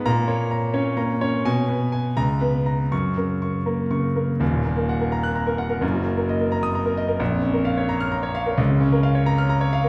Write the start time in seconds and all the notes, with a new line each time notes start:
0.06 A#2 A#5
0.28 A#3 C#5
0.51 A#5
0.74 C#4 C#5
0.97 A#3 A#5
1.21 C#4 C#5
1.45 B2 G#5
1.68 B3 B4
1.92 G#5
2.17 C#2 A#5
2.41 B3 B4
2.66 A#5
2.92 F#2 C#6
3.17 C#3 A#4
3.42 C#6
3.66 A#3 A#4
3.91 C#3 C#6
4.16 A#3 A#4
4.40 D#1 D#2
4.53 A#2
4.65 A#3
4.77 A#4
4.89 F#5
5.01 A#4
5.12 A#5
5.23 F#6
5.35 A#5
5.47 A#4
5.58 F#5
5.69 A#4
5.81 F#1 F#2
5.94 F#3
6.06 A#3
6.17 A#4
6.29 D#5
6.41 A#4
6.52 A#5
6.63 D#6
6.75 A#5
6.86 A#4
6.97 D#5
7.08 A#4
7.20 A#1
7.31 F2
7.42 C#4
7.54 A#4
7.65 F5
7.77 C#5
7.89 A#5
8.00 F6
8.12 A#5
8.23 C#5
8.35 F5
8.46 A#4
8.58 C#2
8.70 C#3
8.80 C#4
8.92 A#4
9.03 F5
9.15 C#5
9.26 A#5
9.38 F6
9.49 A#5
9.61 C#5
9.73 F5
9.84 A#4